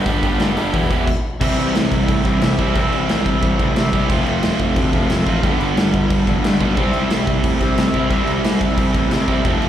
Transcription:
0.06 picked electric bass G1, overdriven electric guitar G2 D3 G3 B3 D4 G4, kick, open hi-hat
0.23 picked electric bass G1, overdriven electric guitar G2 D3 G3 B3 D4 G4, kick, open hi-hat
0.40 picked electric bass G1, overdriven electric guitar G2 D3 G3 B3 D4 G4, snare, open hi-hat
0.56 picked electric bass G1, overdriven electric guitar G2 D3 G3 B3 D4 G4, open hi-hat
0.73 picked electric bass E1, overdriven electric guitar E2 B2 E3 B3 E4 G4, kick, open hi-hat
0.90 picked electric bass E1, overdriven electric guitar E2 B2 E3 B3 E4 G4, kick, open hi-hat
1.07 kick, crash
1.40 picked electric bass C2, overdriven electric guitar C3 E3 G3 C4 E4, kick, crash
1.58 picked electric bass C2, crash
1.75 picked electric bass C2, snare, crash
1.92 picked electric bass C2, kick, crash
2.08 picked electric bass A2, kick, crash
2.24 picked electric bass C2, overdriven electric guitar C3 G3 C4, kick, crash
2.40 picked electric bass C2, overdriven electric guitar C3 G3 C4, snare, crash
2.59 picked electric bass C2, overdriven electric guitar C3 E3 G3 C4 E4, kick, crash
2.74 picked electric bass C2, overdriven electric guitar C3 E3 G3 C4 E4, kick, crash
2.93 picked electric bass C2, crash
3.09 picked electric bass C2, snare, crash
3.26 kick, crash
3.42 picked electric bass C2, kick, crash
3.58 picked electric bass A1, overdriven electric guitar C3 G3 C4, kick, crash
3.76 overdriven electric guitar C3 G3 C4, picked electric bass C3, snare, crash
3.93 picked electric bass C2, overdriven electric guitar C3 E3 G3 C4 E4, kick, crash
4.09 picked electric bass F1, overdriven electric guitar F2 C3 F3 A3 C4 F4, kick, crash
4.26 picked electric bass F1, crash
4.43 picked electric bass F1, snare, crash
4.59 picked electric bass F1, kick, crash
4.76 picked electric bass D2, kick, crash
4.92 picked electric bass F1, overdriven electric guitar F2 C3 F3, kick, crash
5.09 picked electric bass F1, overdriven electric guitar F2 C3 F3, snare, crash
5.26 picked electric bass A1, overdriven electric guitar F3 A3 C4 F4, kick, crash
5.43 picked electric bass G1, overdriven electric guitar G2 D3 G3 B3 D4, kick, crash
5.61 picked electric bass G1, crash
5.77 picked electric bass G1, snare, crash
5.94 kick, crash
6.10 picked electric bass G1, kick, crash
6.26 picked electric bass F1, overdriven electric guitar G2 D3 G3, kick, crash
6.42 overdriven electric guitar G2 D3 G3, picked electric bass G2, snare, crash
6.60 picked electric bass B1, overdriven electric guitar G2 D3 G3 B3 D4, kick, crash
6.76 picked electric bass C2, overdriven electric guitar C3 G3 C4 E4, kick, crash
6.94 picked electric bass C2, crash
7.10 picked electric bass C2, snare, crash
7.27 picked electric bass C2, kick, crash
7.44 picked electric bass A2, kick, crash
7.60 picked electric bass C2, overdriven electric guitar G3 C4, kick, crash
7.64 overdriven electric guitar C3
7.76 picked electric bass C2, overdriven electric guitar C3 G3 C4, snare, crash
7.94 picked electric bass C2, overdriven electric guitar C3 G3 C4 E4, kick, crash
8.10 picked electric bass C2, overdriven electric guitar C3 G3 C4, kick, crash
8.14 overdriven electric guitar E4
8.27 picked electric bass C2, crash
8.44 picked electric bass C2, snare, crash
8.61 kick, crash
8.77 picked electric bass C2, kick, crash
8.92 picked electric bass A1, overdriven electric guitar G3 C4, kick, crash
8.96 overdriven electric guitar C3
9.10 overdriven electric guitar C3 G3 C4, picked electric bass C3, snare, crash
9.28 picked electric bass C2, overdriven electric guitar C3 G3 C4 E4, kick, crash
9.44 picked electric bass F1, overdriven electric guitar F2 C3 F3 A3 C4, kick, crash
9.62 picked electric bass F1, crash

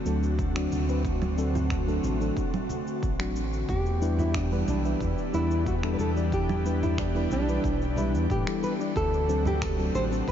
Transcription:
Already playing: analog synth pad D3 A3 C4 F#4
0.05 analog synth bass D2, fm electric piano F#3 C4 D4 A4, shaker
0.23 shaker
0.39 kick, shaker
0.55 fm electric piano F#3 C4 D4 F#4, finger snap
0.71 analog synth bass D2, high conga, shaker
0.88 fm electric piano F#3 C4 D4 B4, shaker
1.05 kick, shaker
1.22 low conga, shaker
1.37 fm electric piano F#3 C4 D4 A4, shaker
1.55 low conga, shaker
1.70 finger snap, kick, shaker
1.87 fm electric piano F#3 C4 D4 A4, shaker
2.03 analog synth bass A1, high conga, shaker
2.20 fm electric piano F#3 C4 D4 A4, shaker
2.37 kick, shaker
2.54 low conga, shaker
2.69 high conga, shaker
2.87 shaker
3.03 analog synth bass A1, kick, shaker
3.19 fm electric piano F#3 C4 D4 F#4, finger snap, shaker
3.36 shaker
3.53 shaker
3.68 analog synth bass E2, analog synth pad E3 B3 D4 G4, nylon-string guitar G4, kick, shaker
3.86 shaker
4.01 fm electric piano G3 D4 E4 B4, shaker
4.19 nylon-string guitar E4, low conga, shaker
4.34 nylon-string guitar D4, finger snap, kick, shaker
4.51 fm electric piano G3 D4 E4 B4, shaker
4.67 analog synth bass B1, nylon-string guitar D4, high conga, shaker
4.84 fm electric piano G3 D4 E4 B4, shaker
5.01 analog synth bass E2, kick, shaker
5.18 shaker
5.33 analog synth bass E2, fm electric piano G3 D4 E4 B4, nylon-string guitar E4, shaker
5.51 shaker
5.66 nylon-string guitar F#4, kick, shaker
5.83 fm electric piano G3 D4 E4 A4, finger snap, shaker
5.94 nylon-string guitar B4
5.99 analog synth bass E2, nylon-string guitar A4, high conga, shaker
6.16 fm electric piano G3 D4 E4 D5, shaker
6.32 nylon-string guitar G4, kick, shaker
6.49 low conga, shaker
6.65 fm electric piano G3 D4 E4 B4, shaker
6.83 nylon-string guitar E4, low conga, shaker
6.98 nylon-string guitar D4, finger snap, kick, shaker
7.15 fm electric piano G3 D4 E4 B4, shaker
7.31 analog synth bass B1, nylon-string guitar D4, high conga, shaker
7.47 fm electric piano G3 D4 E4 B4, shaker
7.64 analog synth bass B1, kick, shaker
7.82 shaker
7.96 fm electric piano G3 D4 E4 B4, nylon-string guitar E4, high conga, shaker
8.14 analog synth bass E2, shaker
8.30 analog synth bass A2, nylon-string guitar G4, kick, shaker
8.46 fm electric piano G3 D4 E4 A4, finger snap, shaker
8.63 nylon-string guitar B4, shaker
8.79 fm electric piano G3 D4 E4 D5, shaker
8.96 analog synth bass D2, analog synth pad D3 A3 C4 F#4, nylon-string guitar A4, kick, shaker
9.14 shaker
9.28 fm electric piano F#3 C4 D4 A4, shaker
9.45 nylon-string guitar G4, low conga, shaker
9.62 nylon-string guitar A4, finger snap, kick, shaker
9.78 fm electric piano F#3 C4 D4 A4, shaker
9.94 analog synth bass A1, nylon-string guitar C5, high conga, shaker
10.11 fm electric piano F#3 C4 D4 A4, shaker
10.28 analog synth bass D2, nylon-string guitar B4, kick, shaker

